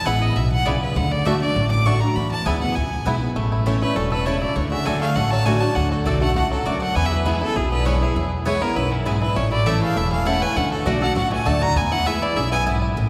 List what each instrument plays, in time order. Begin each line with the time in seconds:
Already playing: steel-string acoustic guitar E2
0.05 upright bass A1, steel-string acoustic guitar E3 G#3 B3 E4, mandolin B3 E4 B4 G#5, five-string banjo B3 E4, fiddle F#5
0.22 fiddle D#5
0.36 upright bass B1, steel-string acoustic guitar B2, fiddle E5
0.52 fiddle F#5
0.65 upright bass C#2, steel-string acoustic guitar C#3, mandolin B3 E4 B4 G#5, five-string banjo B3 E4, fiddle D5
0.82 fiddle B4
0.95 upright bass D2, steel-string acoustic guitar D3, fiddle F#5
1.12 fiddle D5
1.25 steel-string acoustic guitar D3 A3 D4 F#4, mandolin A3 F#4 D5 A5, five-string banjo A3 D4 F#4, fiddle E5
1.41 steel-string acoustic guitar D4 F#4, fiddle D5
1.55 upright bass A1, steel-string acoustic guitar A2
1.71 fiddle D6
1.85 steel-string acoustic guitar D3 A3 D4 F#4, mandolin A3 F#4 D5 A5, five-string banjo A3 D4 F#4, fiddle C#6
2.01 steel-string acoustic guitar D4 F#4, fiddle A#5
2.15 steel-string acoustic guitar E2, upright bass E2, fiddle B5
2.31 fiddle A5
2.45 upright bass D2, steel-string acoustic guitar E3 G#3 B3 E4, mandolin B3 E4 B4 G#5, five-string banjo B3 E4, fiddle G#5
2.61 steel-string acoustic guitar B3 E4, fiddle F#5
2.75 upright bass C#2, steel-string acoustic guitar B2, fiddle G#5
3.06 upright bass B1, steel-string acoustic guitar E3 G#3 B3 E4, mandolin B3 E4 B4 G#5, five-string banjo B3 E4
3.21 steel-string acoustic guitar B3 E4
3.36 upright bass A1, steel-string acoustic guitar A2, five-string banjo A3
3.52 five-string banjo E4
3.66 steel-string acoustic guitar E3 A3 C#4 E4, mandolin A3 E4 C#5 A5, five-string banjo C#4
3.82 five-string banjo A3, steel-string acoustic guitar C#4 E4, resonator guitar played with a steel bar D4, fiddle B4
3.96 upright bass E1, steel-string acoustic guitar B2, five-string banjo C#4, resonator guitar played with a steel bar C#4, fiddle A4
4.11 resonator guitar played with a steel bar D4, five-string banjo A4, fiddle B4
4.26 steel-string acoustic guitar C#3, mandolin A3 E4 C#5 A5, five-string banjo A3, resonator guitar played with a steel bar E4, fiddle C#5
4.41 five-string banjo E4, resonator guitar played with a steel bar F#4, fiddle D5
4.56 upright bass D2, steel-string acoustic guitar D3, five-string banjo D4, resonator guitar played with a steel bar F#4, fiddle C#5
4.71 five-string banjo F#4, resonator guitar played with a steel bar G#4, fiddle E5
4.85 steel-string acoustic guitar D3 A3 D4 F#4, mandolin A3 F#4 D5 A5, five-string banjo A4, resonator guitar played with a steel bar D5, fiddle G#5
5.01 five-string banjo A3, resonator guitar played with a steel bar G#4, fiddle F5
5.16 upright bass A1, steel-string acoustic guitar A2, five-string banjo F#4, resonator guitar played with a steel bar A4, fiddle F#5
5.31 five-string banjo F#3, resonator guitar played with a steel bar C#5, fiddle A5
5.45 steel-string acoustic guitar D3 A3 D4 F#4, mandolin A3 F#4 D5 A5, five-string banjo F#4, resonator guitar played with a steel bar D5, fiddle G#5
5.61 five-string banjo D4, steel-string acoustic guitar D4 F#4, resonator guitar played with a steel bar C#5, fiddle A5
5.75 upright bass D2, steel-string acoustic guitar D3, five-string banjo D4, resonator guitar played with a steel bar A4, fiddle F#5
5.91 five-string banjo F#4, fiddle A4, muted resonator guitar played with a steel bar stroke
6.05 upright bass B1, steel-string acoustic guitar D3 A3 D4 F#4, mandolin A3 F#4 D5 A5, resonator guitar played with a steel bar F#4, five-string banjo A4, fiddle D5
6.21 five-string banjo A3, steel-string acoustic guitar D4 F#4, resonator guitar played with a steel bar A4, fiddle F#5
6.35 upright bass C#2, steel-string acoustic guitar G#2, five-string banjo F#4, resonator guitar played with a steel bar A4, fiddle F#5
6.51 five-string banjo F#3, resonator guitar played with a steel bar C#4, fiddle A4
6.65 upright bass D2, steel-string acoustic guitar F#2, mandolin A3 F#4 D5 A5, resonator guitar played with a steel bar F#4, five-string banjo F#4, fiddle D5
6.81 five-string banjo D4, resonator guitar played with a steel bar A4, fiddle F#5
6.95 upright bass E2, steel-string acoustic guitar E2, five-string banjo B3, resonator guitar played with a steel bar B4, fiddle G#5
7.06 resonator guitar played with a steel bar G#4, fiddle E5
7.12 five-string banjo E4
7.16 resonator guitar played with a steel bar D4, fiddle B4
7.25 steel-string acoustic guitar E3 G#3 B3 E4, mandolin B3 E4 B4 G#5, resonator guitar played with a steel bar B3, five-string banjo E4, fiddle G#4
7.41 steel-string acoustic guitar B3 E4, resonator guitar played with a steel bar C#4, five-string banjo E4, fiddle A4
7.56 upright bass B1, steel-string acoustic guitar B2, resonator guitar played with a steel bar B3, five-string banjo E4, fiddle G#4
7.72 five-string banjo B3, resonator guitar played with a steel bar D4, fiddle B4
7.85 steel-string acoustic guitar E3 G#3 B3 E4, mandolin B3 E4 B4 G#5, five-string banjo E4, resonator guitar played with a steel bar E4, fiddle C#5
8.01 resonator guitar played with a steel bar B3, steel-string acoustic guitar B3 E4, five-string banjo E4, fiddle G#4
8.16 upright bass E2, steel-string acoustic guitar E2, five-string banjo E4
8.45 steel-string acoustic guitar E3 G#3 B3 E4, mandolin B3 E4 B4 G#5, five-string banjo E4, resonator guitar played with a steel bar E4, fiddle C#5
8.61 five-string banjo B3, steel-string acoustic guitar B3 E4, resonator guitar played with a steel bar C#4, fiddle A#4
8.75 upright bass B1, steel-string acoustic guitar F#2, resonator guitar played with a steel bar E4, five-string banjo E4, fiddle B4
8.91 five-string banjo E3, fiddle E4, muted resonator guitar played with a steel bar stroke
9.05 steel-string acoustic guitar G#2, mandolin B3 E4 B4 G#5, resonator guitar played with a steel bar B3, five-string banjo E4, fiddle G#4
9.21 resonator guitar played with a steel bar D4, five-string banjo E4, fiddle B4
9.35 upright bass A1, steel-string acoustic guitar A2, five-string banjo C#4, resonator guitar played with a steel bar E4, fiddle C#5
9.52 five-string banjo E4, resonator guitar played with a steel bar F#4, fiddle D5
9.66 steel-string acoustic guitar E3 A3 C#4 E4, mandolin A3 E4 C#5 A5, resonator guitar played with a steel bar A4, five-string banjo A4, fiddle E5
9.82 five-string banjo A3, resonator guitar played with a steel bar G#4, fiddle F5
9.96 upright bass E1, steel-string acoustic guitar E2, five-string banjo E4, resonator guitar played with a steel bar A4, fiddle E5
10.11 five-string banjo E3, resonator guitar played with a steel bar G#4, fiddle F5
10.25 steel-string acoustic guitar E3 A3 C#4 E4, mandolin A3 E4 C#5 A5, five-string banjo E4, resonator guitar played with a steel bar A4, fiddle F#5
10.42 five-string banjo C#4, resonator guitar played with a steel bar B4, fiddle G#5
10.56 upright bass D2, steel-string acoustic guitar D3, five-string banjo A3, resonator guitar played with a steel bar A4, fiddle F#5
10.72 resonator guitar played with a steel bar C#4, five-string banjo F#4, fiddle A4
10.86 upright bass B1, steel-string acoustic guitar D3 A3 D4 F#4, mandolin A3 F#4 D5 A5, five-string banjo D4, resonator guitar played with a steel bar F#4, fiddle D5
11.01 steel-string acoustic guitar D4 F#4, five-string banjo A4, resonator guitar played with a steel bar A4, fiddle F#5
11.16 upright bass C#2, steel-string acoustic guitar A2, five-string banjo F#4, fiddle F#5
11.32 five-string banjo A3, resonator guitar played with a steel bar B4, fiddle G#5
11.45 upright bass D2, steel-string acoustic guitar D3 A3 D4 F#4, mandolin A3 F#4 D5 A5, five-string banjo A4, resonator guitar played with a steel bar D5, fiddle A5
11.61 five-string banjo F#4, resonator guitar played with a steel bar C#5, fiddle A#5
11.75 upright bass E2, steel-string acoustic guitar E2, five-string banjo B3, resonator guitar played with a steel bar B4, fiddle G#5
11.92 five-string banjo E4, resonator guitar played with a steel bar A4, fiddle F#5
12.06 steel-string acoustic guitar E3 G#3 B3 E4, mandolin B3 E4 B4 G#5, five-string banjo E4, resonator guitar played with a steel bar G#4, fiddle E5
12.22 five-string banjo E4, resonator guitar played with a steel bar F#4, fiddle D5
12.36 upright bass B1, steel-string acoustic guitar F#2, five-string banjo E4, resonator guitar played with a steel bar G#4, fiddle E5
12.52 five-string banjo B3, resonator guitar played with a steel bar B4, fiddle G#5
12.66 steel-string acoustic guitar G#2, mandolin B3 E4 B4 G#5, five-string banjo E4
12.82 five-string banjo E4
12.96 upright bass A1, steel-string acoustic guitar A2